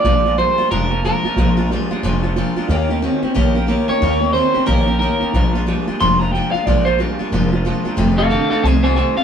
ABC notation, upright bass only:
X:1
M:4/4
L:1/8
Q:"Swing" 1/4=182
K:Bbmix
V:1 name="Upright bass" clef=bass
B,,,3 z F,,,3 z | B,,,3 z F,,,3 z | E,,3 z B,,,3 z | E,,3 z B,,,3 z |
B,,,3 z F,,,3 z | B,,,3 z F,,,3 z | F,,,3 z C,,3 z |]